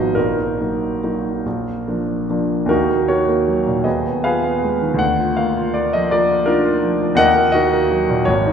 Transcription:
Already playing: G#1 F3 B3 D#4 F#4 G#4 D#5 F5
0.15 A#1 D#4 A#4
0.61 F#3 A#3 D#4
1.03 F#3 A#3 D#4
1.46 A#1
1.88 F3 A#3 D4
2.30 F3 A#3 D4
2.66 D#2 A#4
2.70 D#4 F#4
2.90 A#3
3.08 D#4 F#4 A#4 C#5
3.29 A#3
3.48 F#3
3.67 A#2
3.84 D#2 G#4 B4 D#5
4.07 B3
4.24 F4 G#4 B4 F5
4.44 B3
4.64 G#3
4.82 D#3
4.94 D2
4.99 F#5
5.20 F4
5.37 A#3 F5
5.58 F4
5.74 A#3 D5
5.93 F3 D#5
6.11 A#3 F4 A#4 D5
6.31 F4
6.46 D4 D#4 F4 A#4
6.65 F4
6.83 F3
7.01 F4
7.15 D#2 A#4 D#5 F#5
7.36 A#3
7.52 D#4 F#4 A#4 D#5
7.73 A#3
7.91 F#3
8.10 A#2
8.25 G#1 C#5
8.47 D#4

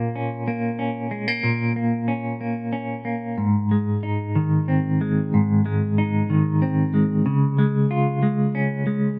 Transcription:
Already playing: A#2 A#3 C#4
0.16 C#4
0.48 A#3
0.79 C#4
1.11 G#3
1.28 A#3
1.43 A#2
1.76 A#3
2.08 C#4
2.41 A#3
2.73 C#4
3.05 A#3
3.38 G#2
3.71 G#3
4.03 D#4
4.35 D#3
4.68 C4
5.01 G#3
5.34 G#2
5.66 G#3
5.98 D#4
6.30 D#3
6.62 C4
6.94 G#3
7.26 C#3
7.58 G#3
7.91 F4
8.23 G#3
8.55 C#4
8.87 G#3

